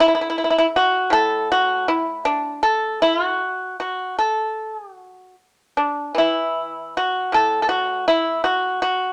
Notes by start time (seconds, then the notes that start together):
Already playing: D3
0.00 E4
0.08 E4
0.15 E4
0.21 E4
0.30 E4
0.38 E4
0.44 E4
0.50 E4
0.58 E4
0.76 F#4
1.10 A2 A4
1.52 F#4
1.88 E4
2.25 D4
2.63 A4
3.02 E4
3.24 F#4
3.80 F#4
4.19 A4
4.96 F#4
5.77 D4
6.15 E3 E4
6.97 F#4
7.32 A2 A4
7.62 A4
7.69 F#4
8.08 E4
8.44 F#4
8.82 F#4